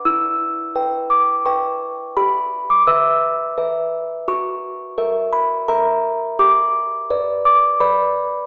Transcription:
\new Staff \with { instrumentName = "Music box" } { \time 3/4 \key e \dorian \tempo 4 = 85 << { e'''4. d'''8 cis'''4 | b''8. d'''16 e'''8 r4. | cis'''4. b''8 ais''4 | d'''4. d'''8 b''4 | } \\ { e'4 <b' g''>4 <b' g''>4 | g'4 <b' e''>4 <b' e''>4 | fis'4 <ais' e''>4 <ais' e''>4 | g'4 <b' d''>4 <b' d''>4 | } >> }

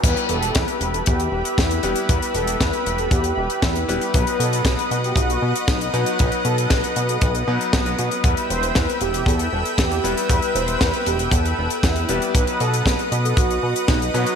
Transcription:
<<
  \new Staff \with { instrumentName = "Analog synth pad" } { \time 4/4 \key e \minor \tempo 4 = 117 << { <b' e'' b''>1~ | <b' e'' b''>1 | <dis'' fis'' dis'''>1~ | <dis'' fis'' dis'''>1 |
<e'' g'' e'''>1~ | <e'' g'' e'''>1 | <dis'' fis'' dis'''>1 | } \\ { g'1~ | g'1 | r1 | r1 |
b'1~ | b'1~ | b'1 | } >> }
  \new Staff \with { instrumentName = "Analog polysynth" } { \time 4/4 \key e \minor b'8 a'8 b'8. a'16 g'8 g'8 e'8 g'8 | b'8 a'8 b'8. a'16 g'8 g'8 e'8 g'8 | b'8 a'8 b'8. g'16 fis'8 fis'8 dis'8 fis'8 | b'8 a'8 b'8. a'16 b'8 b'4 r8 |
b'8 c''8 b'8 g'8 a'4 g'8. r16 | b'8 c''8 b'8 g'8 a'4 e'8 g'8 | b'8 a'8 b'8. a'16 fis'8 fis'8 dis'8 fis'8 | }
  \new Staff \with { instrumentName = "Electric grand piano" } { \time 4/4 \key e \minor <g b e' b'>2.~ <g b e' b'>8 <g b e' b'>8 | <g b e' b'>2.~ <g b e' b'>8 <g b e' b'>8 | <fis b dis' b'>2.~ <fis b dis' b'>8 <fis b dis' b'>8 | <fis b dis' b'>2~ <fis b dis' b'>8 <fis b dis' b'>8. <fis b dis' b'>8. |
<g b e' b'>2.~ <g b e' b'>8 <g b e' b'>8 | <g b e' b'>2.~ <g b e' b'>8 <g b e' b'>8 | <fis b dis' b'>2.~ <fis b dis' b'>8 <fis b dis' b'>8 | }
  \new Staff \with { instrumentName = "Analog synth bass" } { \clef bass \time 4/4 \key e \minor e,8 e,,8 e,8 e,,8 e,8 e,,8 e,8 e,,8 | e,8 e,,8 e,8 e,,8 e,8 e,,8 e,8 e,,8 | b,,8 b,8 b,,8 b,8 b,,8 b,8 b,,8 b,8 | b,,8 b,8 b,,8 b,8 b,,8 b,8 b,,8 b,8 |
e,8 e,,8 e,8 e,,8 e,8 e,,8 e,8 e,,8 | e,8 e,,8 e,8 e,,8 e,8 e,,8 e,8 e,,8 | b,,8 b,8 b,,8 b,8 b,,8 b,8 b,,8 b,8 | }
  \new DrumStaff \with { instrumentName = "Drums" } \drummode { \time 4/4 <cymc hh bd>16 hh16 hh16 hh16 <hh bd sn>16 hh16 hh16 hh16 <hh bd>16 hh8 hh16 <hh bd sn>16 hh16 hh16 hh16 | <hh bd>16 hh16 hh16 hh16 <hh bd sn>16 hh16 hh16 hh16 <hh bd>16 hh8 hh16 <hh bd sn>16 hh16 hh16 hh16 | <hh bd>16 hh16 hh16 hh16 <hh bd sn>16 hh16 hh16 hh16 <hh bd>16 hh8 hh16 <hh bd sn>16 hh16 hh16 hh16 | <hh bd>16 hh16 hh16 hh16 <hh bd sn>16 hh16 hh16 hh16 <hh bd>16 hh8 hh16 <hh bd sn>16 hh16 hh16 hh16 |
<hh bd>16 hh16 hh16 hh16 <hh bd sn>16 hh16 hh16 hh16 <hh bd>16 hh8 hh16 <hh bd sn>16 hh16 hh16 hh16 | <hh bd>16 hh16 hh16 hh16 <hh bd sn>16 hh16 hh16 hh16 <hh bd>16 hh8 hh16 <hh bd sn>16 hh16 hh16 hh16 | <hh bd>16 hh16 hh16 hh16 <hh bd sn>16 hh16 hh16 hh16 <hh bd>16 hh8 hh16 <hh bd sn>16 hh16 hh16 hh16 | }
>>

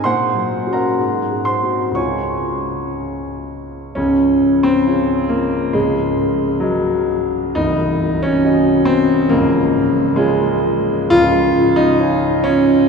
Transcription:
\new Staff \with { instrumentName = "Grand piano" } { \time 2/4 \key des \major \tempo 4 = 66 << { <c'' ges'' c'''>8. <bes' ges'' bes''>8. <c'' c'''>8 | <des'' aes'' des'''>4. r8 | des'8. c'8. bes8 | aes4 ges4 |
ees'8. des'8. c'8 | bes4 aes4 | f'8. ees'8. des'8 | } \\ { \tuplet 3/2 { bes,8 ges8 <des' ges'>8 aes,8 aes8 <c' ges'>8 } | <des, aes des' f'>2 | <des,, des,>4 <f' aes' des''>4 | <des,, des,>4 <ges' bes' ees''>4 |
<c,, c,>4 <ges' ees'' aes''>4 | <des,, des,>4 <f' des'' aes''>4 | <des,, des,>4 <f' des'' aes''>4 | } >> }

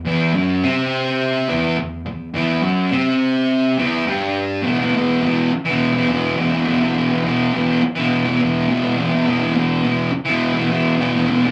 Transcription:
\new Staff \with { instrumentName = "Distorted electric guitar" } { \clef bass \time 4/4 \key e \minor \tempo 4 = 104 <e, e>8 <fis, fis>8 <c c'>4. <e, e>8 e,8 e,8 | <e, e>8 <fis, fis>8 <c c'>4. <e, e>8 <g, g>4 | <e, b, e>16 <b, e>16 <e, b, e>8 <e, b, e>8. <b, e>8 <b, e>16 <e, b, e>8 <e, b, e>16 <b, e>16 <e, b, e>16 <b, e>16 | <e, b, e>16 <b, e>16 <e, b, e>8 <e, b, e>8. <b, e>8 <b, e>16 <e, b, e>8 <e, b, e>16 <b, e>16 <e, b, e>16 <b, e>16 |
<e, b, e>16 <b, e>16 <e, b, e>8 <e, b, e>8. <b, e>8 <b, e>16 <e, b, e>8 <e, b, e>16 <b, e>16 <e, b, e>16 <b, e>16 | }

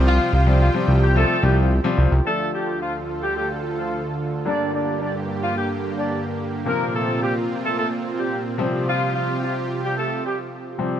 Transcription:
<<
  \new Staff \with { instrumentName = "Supersaw synth" } { \time 4/4 \key d \minor \tempo 4 = 109 << { <f' c'' g''>1 | <d, f' a'>1 | <g, bes g'>1 | <bes, c' f'>2.~ <bes, c' f'>8 <c f' g'>8~ |
<c f' g'>1 | } \\ { g'1 | d1~ | d1 | r1 |
r1 | } >> }
  \new Staff \with { instrumentName = "Horn section" } { \time 4/4 \key d \minor <f f'>8 <f f'>8 <f f'>16 r8 <g g'>16 <a a'>8 <g g'>16 r4 r16 | <a a'>8 <g g'>8 <f f'>16 r8 <g g'>16 <g g'>16 r8 <f f'>8 r8. | <d' d''>8 <d' d''>8 <d' d''>16 r8 <f f'>16 <g g'>16 r8 <d' d''>8 r8. | <bes bes'>8 <a a'>8 <g g'>16 r8 <a a'>16 <a a'>16 r8 <g g'>8 r8. |
<f f'>8 <f f'>8 <f f'>16 r8 <g g'>16 <a a'>8 <g g'>16 r4 r16 | }
  \new Staff \with { instrumentName = "Grand piano" } { \clef bass \time 4/4 \key d \minor <c f g c' f'>8 r16 <c f g c' d'>16 r16 <c f g c' f'>8 r16 <c f g c' f'>16 r16 <c f g c' f'>8 r16 <c f g c' f'>8 r16 | <d f a d'>1 | <d g bes d'>1 | <c f bes c'>2.~ <c f bes c'>8 <c f g c'>8~ |
<c f g c'>2.~ <c f g c'>8 <c f g c'>8 | }
  \new Staff \with { instrumentName = "Analog synth bass" } { \clef bass \time 4/4 \key d \minor c,8 c,4 c,4 c,4 c,16 c,16 | r1 | r1 | r1 |
r1 | }
>>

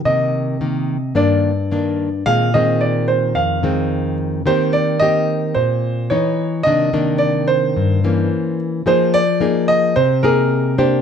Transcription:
<<
  \new Staff \with { instrumentName = "Grand piano" } { \time 4/4 \key c \minor \tempo 4 = 109 ees''2 d''2 | f''8 ees''8 d''8 c''8 f''4. r8 | c''8 d''8 ees''4 c''4 des''4 | ees''4 d''8 c''2 r8 |
c''8 d''4 ees''8 c''8 bes'4 c''8 | }
  \new Staff \with { instrumentName = "Nylon-string guitar" } { \time 4/4 \key c \minor << { <ees bes>4 <ees bes>8 r8 <ees bes d'>8 r8 <ees bes d'>8 r8 | <ees aes c'>8 <ees aes c'>2 <ees aes c'>4. | <bes c' g'>4 <bes c' g'>2 <fes ces' ees'>4 | <ees bes d'>8 <ees bes d'>2 <fes bes des'>4. |
<bes ees' aes'>8 r8 <bes ees' aes'>4 r8 <bes ees' aes'>4 <bes d' g'>8 | } \\ { c2 g,2 | bes,2 f,2 | ees2 bes,4 r4 | c2 g,4 r4 |
f2 c2 | } >> }
>>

